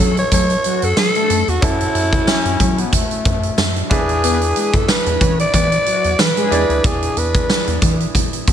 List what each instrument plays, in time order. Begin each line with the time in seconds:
Already playing: grand piano C#4 E4 F#4 A4, alto saxophone A4
0.00 analog synth bass F#3, analog polysynth C#4 C#5
0.17 alto saxophone C#5, closed hi-hat
0.32 analog synth bass F#3, analog polysynth A3 A4, alto saxophone C#5, kick, closed hi-hat
0.50 closed hi-hat
0.64 analog polysynth F#3 F#4, closed hi-hat
0.82 analog synth bass F#2, alto saxophone A4, closed hi-hat
0.97 analog synth bass F#3, alto saxophone A4, snare, tambourine
1.15 analog polysynth A3 A4, closed hi-hat
1.30 analog synth bass F#2, closed hi-hat
1.48 analog synth bass E2, alto saxophone F#4, closed hi-hat
1.61 analog synth bass F#2, grand piano C#4 E4 F#4 A4, alto saxophone E4, kick, closed hi-hat
1.81 closed hi-hat
1.95 analog synth bass F#2, closed hi-hat
2.13 kick, closed hi-hat
2.27 bass clarinet C#4, snare, tambourine
2.45 analog synth bass F#2, closed hi-hat
2.60 analog synth bass F#3, kick, closed hi-hat
2.78 bass clarinet B3, closed hi-hat
2.93 bass clarinet A3, kick, closed hi-hat
3.11 closed hi-hat
3.25 analog synth bass F#2, kick, closed hi-hat
3.43 closed hi-hat
3.58 analog synth bass F#2, snare, tambourine
3.76 closed hi-hat
3.90 analog synth bass E2, grand piano E3 D4 E4 G#4 B4, alto saxophone G#4, kick, closed hi-hat
4.09 closed hi-hat
4.24 analog polysynth B3 B4, closed hi-hat
4.41 closed hi-hat
4.56 analog polysynth G#3 G#4, closed hi-hat
4.74 analog synth bass F#2, alto saxophone A4, kick, closed hi-hat
4.88 alto saxophone B4, snare, tambourine
5.06 analog synth bass E2, closed hi-hat
5.21 analog synth bass E3, analog polysynth C#4 C#5, kick, closed hi-hat
5.39 alto saxophone D5, closed hi-hat
5.54 analog synth bass E3, analog polysynth B3 B4, alto saxophone D5, kick, closed hi-hat
5.72 closed hi-hat
5.86 analog polysynth F#3 F#4, closed hi-hat
6.04 analog synth bass E2, closed hi-hat
6.19 analog synth bass E3, alto saxophone B4, snare, tambourine
6.37 analog polysynth G#3 G#4, closed hi-hat
6.50 analog synth bass E2, grand piano E3 D4 E4 G#4 D5, closed hi-hat
6.69 analog synth bass D2, closed hi-hat
6.84 analog synth bass E2, alto saxophone G#4, kick, closed hi-hat
7.03 closed hi-hat
7.17 analog synth bass E2, alto saxophone B4, closed hi-hat
7.35 kick, closed hi-hat
7.50 snare, tambourine
7.67 analog synth bass E2, closed hi-hat
7.82 analog synth bass E3, kick, closed hi-hat
8.00 closed hi-hat
8.15 kick, closed hi-hat
8.33 closed hi-hat
8.47 analog synth bass E2, kick, closed hi-hat